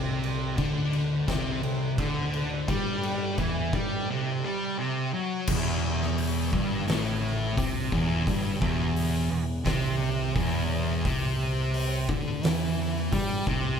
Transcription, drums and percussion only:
0.23 crash
0.58 kick, crash
0.93 crash
1.28 kick, snare, crash
1.63 crash
1.98 kick, crash
2.33 crash
2.68 kick, crash
3.03 crash
3.38 kick, crash
3.73 kick, crash
5.47 kick, crash
6.02 snare
6.18 open hi-hat
6.53 kick
6.88 snare, open hi-hat
7.58 kick, open hi-hat
7.92 kick
8.27 kick, open hi-hat
8.62 kick
8.96 open hi-hat
9.65 kick, snare, open hi-hat
10.36 kick, open hi-hat
11.05 kick, open hi-hat
11.74 open hi-hat
12.09 kick
12.43 snare, open hi-hat
13.12 kick, open hi-hat
13.47 kick

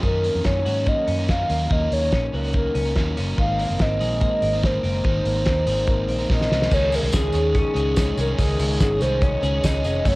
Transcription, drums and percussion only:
0.03 kick, closed hi-hat
0.24 open hi-hat
0.44 kick, snare, closed hi-hat
0.66 open hi-hat
0.86 kick, closed hi-hat
1.07 open hi-hat
1.28 kick, snare, closed hi-hat
1.50 open hi-hat
1.71 kick, closed hi-hat
1.92 open hi-hat
2.12 kick, snare, closed hi-hat
2.34 open hi-hat
2.53 kick, closed hi-hat
2.75 open hi-hat
2.95 kick, snare, closed hi-hat
3.17 open hi-hat
3.38 kick, closed hi-hat
3.59 open hi-hat
3.79 kick, snare, closed hi-hat
4.01 open hi-hat
4.21 kick, closed hi-hat
4.42 open hi-hat
4.63 kick, snare, closed hi-hat
4.84 open hi-hat
5.04 kick, closed hi-hat
5.25 open hi-hat
5.46 kick, snare, closed hi-hat
5.67 open hi-hat
5.87 kick, closed hi-hat
6.09 open hi-hat
6.30 kick, snare
6.41 snare
6.52 snare
6.62 snare
6.71 kick, crash, tambourine
6.92 hi-hat pedal, open hi-hat, tambourine
7.13 kick, snare, hi-hat pedal, open hi-hat, tambourine
7.32 hi-hat pedal, open hi-hat, tambourine
7.55 kick, hi-hat pedal, open hi-hat, tambourine
7.76 hi-hat pedal, open hi-hat
7.96 kick, snare, hi-hat pedal, open hi-hat, tambourine
8.17 hi-hat pedal, open hi-hat, tambourine
8.39 kick, hi-hat pedal, open hi-hat, tambourine
8.59 hi-hat pedal, open hi-hat, tambourine
8.80 kick, snare, hi-hat pedal, open hi-hat, tambourine
9.01 hi-hat pedal, open hi-hat, tambourine
9.22 kick, hi-hat pedal, open hi-hat
9.43 hi-hat pedal, open hi-hat, tambourine
9.64 kick, snare, hi-hat pedal, open hi-hat, tambourine
9.84 hi-hat pedal, open hi-hat, tambourine
10.05 kick, hi-hat pedal, open hi-hat, tambourine

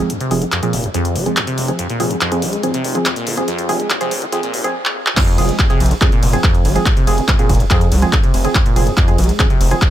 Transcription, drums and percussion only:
0.10 closed hi-hat
0.20 closed hi-hat
0.31 open hi-hat
0.42 closed hi-hat
0.52 clap, closed hi-hat
0.63 closed hi-hat
0.73 open hi-hat
0.84 closed hi-hat
0.94 closed hi-hat
1.05 closed hi-hat
1.16 open hi-hat
1.26 closed hi-hat
1.37 clap, closed hi-hat
1.47 closed hi-hat
1.58 open hi-hat
1.68 closed hi-hat
1.79 closed hi-hat
1.90 closed hi-hat
2.00 open hi-hat
2.11 closed hi-hat
2.21 clap, closed hi-hat
2.32 closed hi-hat
2.42 open hi-hat
2.53 closed hi-hat
2.63 closed hi-hat
2.74 closed hi-hat
2.84 open hi-hat
2.95 closed hi-hat
3.06 clap, closed hi-hat
3.16 closed hi-hat
3.27 open hi-hat
3.37 closed hi-hat
3.48 closed hi-hat
3.59 closed hi-hat
3.69 open hi-hat
3.80 closed hi-hat
3.90 clap, closed hi-hat
4.01 closed hi-hat
4.11 open hi-hat
4.22 closed hi-hat
4.32 closed hi-hat
4.43 closed hi-hat
4.54 open hi-hat
4.64 closed hi-hat
4.85 clap
5.07 clap
5.17 kick, clap, closed hi-hat, ride, crash
5.28 closed hi-hat
5.38 open hi-hat, ride
5.49 closed hi-hat
5.59 kick, clap, closed hi-hat, ride
5.70 closed hi-hat
5.80 open hi-hat, ride
5.86 closed hi-hat
5.91 closed hi-hat
6.01 kick, clap, closed hi-hat
6.12 closed hi-hat
6.23 open hi-hat, ride
6.33 closed hi-hat
6.44 kick, clap, closed hi-hat, ride
6.54 closed hi-hat
6.65 open hi-hat, ride
6.76 closed hi-hat
6.86 kick, clap, closed hi-hat, ride
6.97 closed hi-hat
7.07 open hi-hat, ride
7.18 closed hi-hat
7.28 kick, clap, closed hi-hat, ride
7.39 closed hi-hat
7.49 kick, open hi-hat, ride
7.55 closed hi-hat
7.60 closed hi-hat
7.71 kick, clap, closed hi-hat, ride
7.81 closed hi-hat
7.92 open hi-hat, ride
8.02 closed hi-hat
8.13 kick, clap, closed hi-hat
8.23 closed hi-hat
8.34 open hi-hat, ride
8.45 closed hi-hat
8.55 kick, clap, closed hi-hat, ride
8.66 closed hi-hat
8.76 open hi-hat, ride
8.87 closed hi-hat
8.97 kick, clap, closed hi-hat, ride
9.08 closed hi-hat
9.18 open hi-hat, ride
9.24 closed hi-hat
9.29 closed hi-hat
9.40 kick, clap, closed hi-hat, ride
9.50 closed hi-hat
9.61 open hi-hat, ride
9.71 closed hi-hat
9.82 kick, clap, closed hi-hat, ride

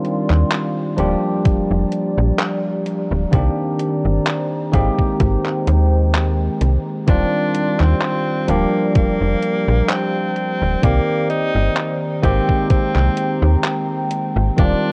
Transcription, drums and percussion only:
0.05 closed hi-hat
0.30 clap
0.52 clap, closed hi-hat
0.98 closed hi-hat
1.45 kick, closed hi-hat
1.92 closed hi-hat
2.39 clap, closed hi-hat
2.86 closed hi-hat
3.33 kick, closed hi-hat
3.80 closed hi-hat
4.27 clap, closed hi-hat
4.74 kick, closed hi-hat
4.99 kick
5.20 kick, closed hi-hat
5.46 clap
5.67 closed hi-hat
6.14 clap, closed hi-hat
6.61 closed hi-hat
7.08 kick, closed hi-hat
7.55 closed hi-hat
7.80 clap
8.02 clap, closed hi-hat
8.48 closed hi-hat
8.95 kick, closed hi-hat
9.42 closed hi-hat
9.89 clap, closed hi-hat
10.36 closed hi-hat
10.83 kick, closed hi-hat
11.30 closed hi-hat
11.77 clap, closed hi-hat
12.24 kick, closed hi-hat
12.49 kick
12.70 kick, closed hi-hat
12.96 clap
13.17 closed hi-hat
13.64 clap, closed hi-hat
14.11 closed hi-hat
14.58 kick, closed hi-hat

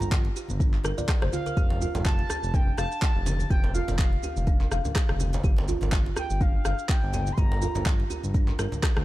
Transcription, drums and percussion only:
0.00 muted conga, low conga, shaker
0.12 kick, clap, high conga, shaker
0.25 muted conga
0.36 shaker
0.48 high conga, shaker
0.60 kick, muted conga, low conga, shaker
0.74 clap
0.84 cross-stick, muted conga, shaker
0.98 high conga, low conga, shaker
1.08 kick, cross-stick, clap, muted conga, shaker
1.22 cross-stick, high conga
1.33 high conga, shaker
1.46 muted conga, high conga, shaker
1.57 kick, low conga, shaker
1.70 djembe slap, muted conga
1.81 djembe tone, shaker
1.95 muted conga, djembe slap, low conga, shaker
2.05 kick, clap, high conga, shaker
2.19 muted conga
2.29 cross-stick, djembe tone, shaker
2.43 shaker
2.54 kick, muted conga, djembe tone, shaker
2.77 cross-stick, muted conga, shaker
2.92 shaker
3.02 kick, clap, muted conga, shaker
3.26 djembe slap, high conga, shaker
3.39 muted conga, high conga, shaker
3.50 kick, low conga, shaker
3.64 djembe slap, muted conga
3.75 djembe tone, shaker
3.88 djembe slap, muted conga, low conga, shaker
3.99 kick, clap, high conga, shaker
4.13 muted conga
4.23 djembe tone, shaker
4.37 high conga, shaker
4.47 kick, muted conga, low conga, shaker
4.61 clap, djembe tone
4.71 cross-stick, muted conga, shaker
4.85 high conga, djembe tone, low conga, shaker
4.96 kick, cross-stick, clap, shaker
5.09 cross-stick, high conga
5.20 high conga, djembe tone, shaker
5.33 muted conga, djembe slap, high conga, shaker
5.44 kick, low conga, shaker
5.57 muted conga, djembe slap
5.68 djembe tone, shaker
5.81 muted conga, djembe slap, low conga, shaker
5.92 kick, clap, high conga, shaker
6.06 muted conga
6.16 cross-stick, djembe tone, shaker
6.30 shaker
6.41 kick, muted conga, djembe tone, shaker
6.65 cross-stick, muted conga, shaker
6.79 shaker
6.89 kick, clap, muted conga, shaker
7.13 djembe slap, high conga, shaker
7.27 muted conga, high conga, shaker
7.38 kick, low conga, shaker
7.52 djembe slap, muted conga
7.62 djembe tone, shaker
7.75 djembe slap, muted conga, low conga, shaker
7.86 kick, clap, high conga, shaker
8.00 muted conga
8.10 djembe tone, shaker
8.23 high conga, shaker
8.34 kick, muted conga, low conga, shaker
8.48 clap, djembe tone
8.59 cross-stick, muted conga, shaker
8.72 djembe tone, high conga, low conga, shaker
8.83 kick, cross-stick, clap, shaker
8.97 cross-stick, high conga

